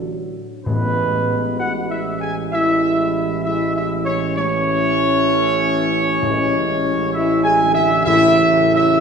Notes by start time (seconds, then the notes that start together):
Already playing: A1 D3 F#3 A3 A4
0.65 A1 A2 E3 G#3 B3 B4
1.58 F#4 F#5
1.89 E4 E5
2.20 G#4 G#5
2.52 E3 G#3 E4 E5
3.44 E3 G#3 E4 E5
3.76 E4 E5
4.05 C#4 C#5
4.38 E3 A3 C#4 C#5
6.22 A1 A2 E3 G#3
7.14 E3 G#3 E4 E5
7.43 G#4 G#5
7.61 D3
7.74 E4 E5
8.05 A2 C#3 A3 E4 E5
8.75 E4 E5